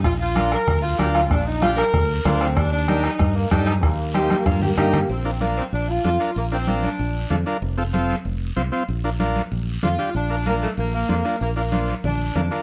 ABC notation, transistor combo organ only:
X:1
M:4/4
L:1/8
Q:1/4=190
K:Bb
V:1 name="Transistor combo organ"
z2 [DFB] z3 [DFB] z | z2 [DFG] z3 [DFc] z | z2 [EGB] z3 [EGA] z | z2 [EGc] z3 [EGB] z |
z [DFB] [DFB] z3 [DFA] [DFB] | z [DFB] [DFB] z3 [DFA] [DFB] | z [CFA] [CFA] z3 [CFc] [CFc] | z [DFB] [DFB] z3 [DFc] [DFG] |
z [DFB] [DFB] z3 [DFc] [DFB] | z [DFB] [DFc] z3 [DFB] [DFB] |]